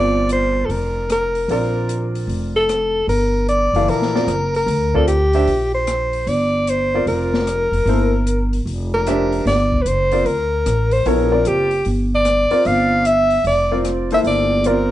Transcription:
Already playing: upright bass G1, grand piano C4 F4 A#4 D5, alto saxophone D5
0.29 alto saxophone C5, closed hi-hat
0.66 upright bass F1, alto saxophone A4
0.70 alto saxophone A#4, open hi-hat
1.10 alto saxophone A#4, cross-stick, closed hi-hat
1.35 open hi-hat
1.48 upright bass A#1, grand piano C4 F4 A#4 D5, alto saxophone A#4, open hi-hat
1.89 closed hi-hat
2.15 open hi-hat
2.27 upright bass F1, open hi-hat
2.56 alto saxophone A4
2.69 cross-stick, closed hi-hat
3.07 upright bass G1, alto saxophone A#4, open hi-hat
3.49 alto saxophone D5, closed hi-hat
3.73 upright bass F#1, grand piano E3 A4 D5 F5, open hi-hat
3.88 upright bass A#1, alto saxophone A#4, open hi-hat
4.02 snare
4.15 grand piano C4 F4 A#4 D5, snare
4.27 upright bass F#1, cross-stick, closed hi-hat
4.54 alto saxophone A#4, open hi-hat
4.66 upright bass D2, open hi-hat
4.94 grand piano C4 F4 A#4 D5, alto saxophone A4, kick
5.08 alto saxophone G4, closed hi-hat
5.33 grand piano D4 G4 C5 E5, open hi-hat
5.47 upright bass A#1, open hi-hat
5.74 alto saxophone C5
5.87 cross-stick, closed hi-hat
6.13 open hi-hat
6.27 upright bass G1, alto saxophone D5, open hi-hat
6.67 alto saxophone C5, closed hi-hat
6.94 grand piano C4 F4 A#4 D5
7.06 upright bass F1, alto saxophone A#4, open hi-hat
7.34 snare
7.47 cross-stick, closed hi-hat
7.72 upright bass F1, open hi-hat
7.86 upright bass G1, grand piano A#3 E4 A4 C5, open hi-hat
8.27 closed hi-hat
8.53 open hi-hat
8.65 upright bass F1, open hi-hat
8.94 alto saxophone A#4
9.07 grand piano D4 G4 C5 E5, cross-stick, closed hi-hat
9.32 open hi-hat
9.45 upright bass G1, alto saxophone D5, snare, open hi-hat
9.72 kick
9.82 upright bass F#1, alto saxophone B4, closed hi-hat
9.87 alto saxophone C5
10.11 grand piano C4 F4 A#4 D5, open hi-hat
10.25 upright bass D2, alto saxophone A#4, open hi-hat
10.66 upright bass A1, cross-stick, closed hi-hat
10.91 alto saxophone C5, open hi-hat
11.06 upright bass A#1, grand piano B3 E4 A4 C#5, alto saxophone A#4, open hi-hat
11.32 grand piano C4 F4 A#4 D5
11.45 upright bass F#1, alto saxophone G4, closed hi-hat
11.71 open hi-hat
11.85 upright bass G1, open hi-hat
12.15 alto saxophone D5
12.25 cross-stick, closed hi-hat
12.51 grand piano C4 F4 A#4 D5, muted upright bass stroke, open hi-hat
12.65 upright bass G1, alto saxophone F5, open hi-hat
13.05 alto saxophone E5, closed hi-hat
13.30 open hi-hat
13.44 upright bass F1, alto saxophone D5, open hi-hat
13.72 grand piano C4 F4 A#4 D5
13.85 cross-stick, closed hi-hat
14.11 grand piano A#3 E4 A4 C5, alto saxophone E5, open hi-hat
14.24 upright bass G1, alto saxophone D5, open hi-hat
14.64 grand piano C4 F4 A#4 D5, alto saxophone A#4, closed hi-hat

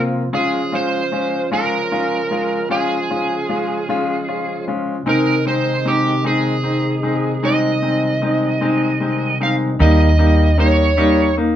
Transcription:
Already playing: tonewheel organ C3 F3 A#3 F4, grand piano A#3 C4 F4
0.33 tonewheel organ C#3 G#3 F4, grand piano G#3 C#4 F4, electric slide guitar G#4
0.72 grand piano G#3 C#4 F4, electric slide guitar C5
1.12 grand piano G#3 C#4 F4
1.52 grand piano G#3 C#4 F4, electric slide guitar A#4
1.92 grand piano G#3 C#4 F4
2.31 grand piano G#3 C#4 F4
2.70 grand piano G#3 C#4 F4, electric slide guitar G#4
3.10 grand piano G#3 C#4 F4
3.49 grand piano G#3 C#4 F4
3.89 grand piano G#3 C#4 F4
4.28 grand piano C#4 F4
4.68 grand piano G#3 C#4 F4
5.06 tonewheel organ C3 D#3 D#4, grand piano G#3 C4 D#4, electric slide guitar A#4
5.46 grand piano G#3 C4 D#4, electric slide guitar C5
5.85 grand piano G#3 C4 D#4, electric slide guitar G4
6.24 grand piano G#3 C4 D#4, electric slide guitar G#4
6.63 grand piano C4 D#4
7.03 grand piano G#3 C4 D#4
7.43 tonewheel organ G3, grand piano G#3 C4 D#4, electric slide guitar D#5
7.82 grand piano G#3 C4 D#4
8.22 grand piano G#3 C4 D#4
8.61 grand piano G#3 C4 D#4
9.00 grand piano G#3 C4 D#4
9.40 grand piano G#3 C4 D#4, electric slide guitar F5
9.79 fingered electric bass D#2, grand piano G3 A#3 D#4, electric slide guitar D#5
10.19 grand piano G3 A#3 D#4
10.58 grand piano G3 A#3 D#4, electric slide guitar C#5
10.97 grand piano G3 A#3 D#4
11.37 grand piano A#3 D#4

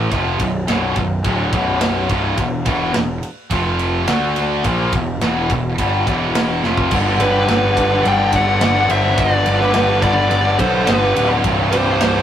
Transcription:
Already playing: distorted electric guitar A2 E3 A3
0.12 picked electric bass F1, distorted electric guitar F2 C3 F3, kick, ride
0.40 picked electric bass B0, distorted electric guitar B1 F#2, kick, ride
0.67 picked electric bass B0, distorted electric guitar B1 F#2 B2, snare, ride
0.96 picked electric bass B0, distorted electric guitar B1 F#2, kick, ride
1.24 picked electric bass D1, distorted electric guitar D2 A2 D3, kick, ride
1.53 picked electric bass B0, distorted electric guitar B1 F#2 B2, kick, ride
1.81 snare, ride
2.09 picked electric bass C1, distorted electric guitar C2 G2 C3, kick, ride
2.38 picked electric bass E1, distorted electric guitar E2 B2, kick, ride
2.65 picked electric bass E1, distorted electric guitar E2 B2 E3, kick, ride
2.94 picked electric bass E1, distorted electric guitar E2 B2, snare, ride
3.23 ride
3.51 picked electric bass F1, distorted electric guitar F2 C3 F3, kick, ride
3.79 ride
4.07 picked electric bass D2, distorted electric guitar D3 A3 D4, snare, ride
4.36 snare, ride
4.64 picked electric bass A#1, distorted electric guitar A#2 F3 A#3, kick, ride
4.92 picked electric bass E1, distorted electric guitar E2 B2, kick, ride
5.21 picked electric bass E1, distorted electric guitar E2 B2 E3, snare, ride
5.50 picked electric bass E1, distorted electric guitar E2 B2, kick, ride
5.78 picked electric bass G1, distorted electric guitar G2 D3 G3, kick, ride
6.07 picked electric bass E1, distorted electric guitar E2 B2 E3, kick, ride
6.35 snare, ride
6.64 picked electric bass F1, distorted electric guitar F2 C3 F3, snare
6.77 kick
6.91 picked electric bass G1, distorted electric guitar G2 D3, kick, crash
7.01 distorted electric guitar G2 D3
7.08 distorted electric guitar G2 D3
7.15 distorted electric guitar G2 D3
7.19 picked electric bass G1, lead electric guitar G4 B4, ride
7.24 distorted electric guitar G2 D3
7.31 distorted electric guitar G2 D3
7.39 distorted electric guitar G2 D3
7.46 picked electric bass G1, distorted electric guitar G2 D3, snare, ride
7.55 distorted electric guitar G2 D3
7.62 distorted electric guitar G2 D3
7.70 distorted electric guitar G2 D3
7.77 picked electric bass G1, distorted electric guitar G2 D3, kick, ride
7.86 distorted electric guitar G2 D3
7.93 distorted electric guitar G2 D3
8.02 picked electric bass G1, distorted electric guitar G2 D3, lead electric guitar D5, ride
8.08 distorted electric guitar G2 D3, lead electric guitar G5
8.16 distorted electric guitar G2 D3
8.23 distorted electric guitar G2 D3
8.32 distorted electric guitar G2 D3, lead electric guitar D5, kick, ride
8.36 distorted electric guitar G2, lead electric guitar F#5
8.41 distorted electric guitar D3
8.47 distorted electric guitar G2 D3
8.55 distorted electric guitar G2 D3
8.61 picked electric bass G1, distorted electric guitar G2 D3, lead electric guitar D5 F#5, snare, ride
8.70 distorted electric guitar G2 D3
8.78 distorted electric guitar G2 D3
8.86 picked electric bass G1, distorted electric guitar G2 D3, ride
8.90 distorted electric guitar G2, lead electric guitar C5 E5
8.95 distorted electric guitar D3
9.01 distorted electric guitar G2 D3
9.10 distorted electric guitar G2 D3
9.18 picked electric bass G1, distorted electric guitar G2 D3, lead electric guitar B4 D5, kick, ride
9.27 distorted electric guitar G2 D3
9.34 distorted electric guitar G2 D3
9.42 distorted electric guitar G2 D3, ride
9.46 picked electric bass G1, distorted electric guitar G2
9.51 distorted electric guitar D3
9.57 distorted electric guitar G2 D3, lead electric guitar G4 B4, snare
9.66 distorted electric guitar G2 D3
9.73 picked electric bass G1, distorted electric guitar G2 D3, snare, ride
9.80 distorted electric guitar G2 D3
9.88 distorted electric guitar G2 D3
9.96 distorted electric guitar G2 D3
10.02 distorted electric guitar G2 D3, lead electric guitar B4 D5, kick, ride
10.12 distorted electric guitar G2 D3
10.20 distorted electric guitar G2 D3
10.28 picked electric bass G1, distorted electric guitar G2 D3, ride
10.35 distorted electric guitar G2 D3
10.42 distorted electric guitar G2 D3
10.51 distorted electric guitar G2 D3
10.58 picked electric bass B1, distorted electric guitar G2 D3, lead electric guitar A4 C5, kick, ride
10.66 distorted electric guitar G2 D3
10.74 distorted electric guitar G2 D3
10.82 distorted electric guitar G2 D3
10.87 picked electric bass G1, distorted electric guitar G2 D3, lead electric guitar G4 B4, snare, ride
10.98 distorted electric guitar G2 D3
11.05 distorted electric guitar G2 D3
11.13 picked electric bass D1, distorted electric guitar G2 D3, ride
11.21 distorted electric guitar G2 D3
11.29 distorted electric guitar G2 D3
11.36 distorted electric guitar G2 D3
11.44 picked electric bass C1, distorted electric guitar C2 G2, kick, ride
11.53 distorted electric guitar C2 G2
11.60 distorted electric guitar C2 G2
11.68 distorted electric guitar C2 G2, lead electric guitar G4
11.72 picked electric bass C1, distorted electric guitar G2, lead electric guitar C5, ride
11.76 distorted electric guitar C2
11.84 distorted electric guitar C2 G2
11.92 distorted electric guitar C2 G2
12.00 picked electric bass C1, distorted electric guitar C2 G2, snare, ride
12.07 distorted electric guitar C2 G2
12.14 distorted electric guitar C2 G2

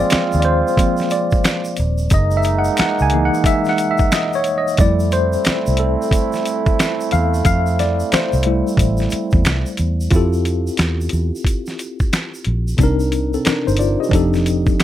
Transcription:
Already playing: tine electric piano F3 A#3 C4 C5, trombone section G#3 C4 F4
0.00 tine electric piano D5
0.10 finger snap, snare, closed hi-hat, shaker
0.13 finger snap, muted fingered electric bass stroke
0.32 fingered electric bass D#2, shaker
0.40 tine electric piano D5, closed hi-hat
0.45 tine electric piano C5
0.68 shaker
0.77 tine electric piano F3 A#3 C4, kick, closed hi-hat, shaker
0.97 snare, shaker
1.10 tine electric piano D5, closed hi-hat, shaker
1.31 kick, shaker
1.44 finger snap, snare, closed hi-hat, shaker
1.65 shaker
1.76 fingered electric bass D#1, closed hi-hat, shaker
1.98 shaker
2.10 fingered electric bass F#1, trombone section G#3 A#3 D#4, tine electric piano D#5, kick, closed hi-hat, shaker
2.31 shaker
2.37 tine electric piano E5
2.43 closed hi-hat, shaker
2.59 tine electric piano F#5
2.64 shaker
2.77 finger snap, snare, closed hi-hat, shaker
2.80 tine electric piano F#5, finger snap, muted fingered electric bass stroke
2.99 fingered electric bass C#2, tine electric piano G#5, shaker
3.10 tine electric piano E3 G#3, closed hi-hat
3.14 tine electric piano A#3 D#4
3.25 tine electric piano F#5
3.34 shaker
3.44 tine electric piano E5, kick, closed hi-hat, shaker
3.65 snare, shaker
3.69 tine electric piano F#5
3.78 closed hi-hat, shaker
3.91 tine electric piano E5
3.98 kick, shaker
4.12 tine electric piano D#5, finger snap, snare, closed hi-hat, shaker
4.33 tine electric piano C#5, shaker
4.44 closed hi-hat, shaker
4.58 tine electric piano D#5
4.68 shaker
4.77 fingered electric bass F2, tine electric piano G3 A3 E4 D5, trombone section A3 C4 E4, kick, closed hi-hat, shaker
5.00 shaker
5.12 tine electric piano C5, closed hi-hat, shaker
5.33 shaker
5.45 finger snap, snare, closed hi-hat, shaker
5.47 finger snap, muted fingered electric bass stroke
5.66 fingered electric bass C2, shaker
5.77 tine electric piano A4, closed hi-hat
6.02 shaker
6.11 kick, closed hi-hat, shaker
6.32 snare, shaker
6.46 closed hi-hat, shaker
6.66 kick, shaker
6.79 finger snap, snare, closed hi-hat, shaker
7.01 shaker
7.11 fingered electric bass E2, tine electric piano F5, closed hi-hat, shaker
7.34 shaker
7.45 fingered electric bass F2, tine electric piano F5, kick, closed hi-hat, shaker
7.66 shaker
7.79 tine electric piano D5, snare, closed hi-hat, shaker
8.00 shaker
8.12 tine electric piano C5, finger snap, muted fingered electric bass stroke, snare, closed hi-hat, shaker
8.14 finger snap
8.33 fingered electric bass C2, shaker
8.43 tine electric piano G3 A3 E4, closed hi-hat
8.67 shaker
8.77 fingered electric bass A1, kick, closed hi-hat, shaker
8.97 snare, shaker
9.10 muted fingered electric bass stroke, closed hi-hat, shaker
9.31 fingered electric bass E2, kick, shaker
9.45 fingered electric bass C2, finger snap, snare, closed hi-hat, shaker
9.47 finger snap
9.66 shaker
9.77 fingered electric bass E2, closed hi-hat, shaker
10.01 shaker
10.11 fingered electric bass F2, tine electric piano C4 E4 F4, kick, closed hi-hat, shaker
10.15 tine electric piano G4 A4
10.33 shaker
10.45 closed hi-hat, shaker
10.67 shaker
10.77 fingered electric bass E2, finger snap, snare, closed hi-hat, shaker
11.01 shaker
11.09 fingered electric bass E2, closed hi-hat, shaker
11.36 shaker
11.45 kick, closed hi-hat, shaker
11.66 snare, shaker
11.79 closed hi-hat, shaker
12.00 kick, shaker
12.13 finger snap, snare, closed hi-hat, shaker
12.34 shaker
12.44 fingered electric bass A#1, closed hi-hat
12.68 shaker
12.77 fingered electric bass C2, tine electric piano C3 C4 D4, kick, closed hi-hat, shaker
12.81 tine electric piano D#4 A#4
13.00 shaker
13.12 closed hi-hat, shaker
13.33 tine electric piano C4 A4, shaker
13.45 tine electric piano D4 A#4, finger snap, muted fingered electric bass stroke, snare, closed hi-hat, shaker
13.67 fingered electric bass G1, tine electric piano D#4 C5, shaker
13.77 tine electric piano F4 D5, closed hi-hat, shaker
14.00 tine electric piano G4 D#5, shaker
14.09 fingered electric bass F1, tine electric piano F3 C4 D4 D#4, kick
14.13 tine electric piano G4 A4, closed hi-hat, shaker
14.34 snare, shaker
14.46 closed hi-hat, shaker
14.66 kick, shaker
14.80 finger snap, snare, closed hi-hat, shaker

